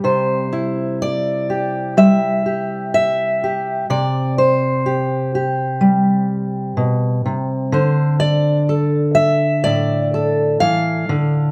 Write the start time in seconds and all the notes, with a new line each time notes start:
Already playing: G3
0.04 C3 C5
0.53 E4
1.02 D5
1.50 G4
1.97 G3 E5
2.46 G4
2.94 E5
3.44 G4
3.90 C3 D5
4.38 C5
4.86 G4
5.35 G4
5.81 G3
6.77 B2
7.26 C3
7.72 D3 C5
8.20 D5
8.69 A4
9.15 E5
9.64 A2 D5
10.14 A4
10.60 E3 F5
11.09 D3